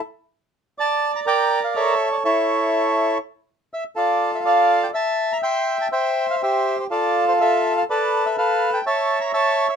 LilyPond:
\new Staff \with { instrumentName = "Bandoneon" } { \time 4/4 \key a \phrygian \tempo 4 = 123 << { r4. a''8. bes''16 g''8. f''16 e''8~ | e''16 d''16 cis''2 r4 e''8 | d''8. e''16 f''8. g''16 a''8. bes''16 c'''8. a''16 | g''8. f''16 e''8. c''16 d''8. c''16 e''8. f''16 |
d''8. e''16 f''8. g''16 a''8. bes''16 a''8. e''16 | } \\ { r4. d''4 <bes' d''>4 <a' cis''>8~ | <a' cis''>8 <e' a'>2 r4. | <f' a'>4 <a' d''>4 e''4 <e'' g''>4 | <c'' e''>4 <g' c''>4 <f' a'>4 a'4 |
<a' b'>4 <a' b'>4 <cis'' e''>4 <cis'' e''>4 | } >> }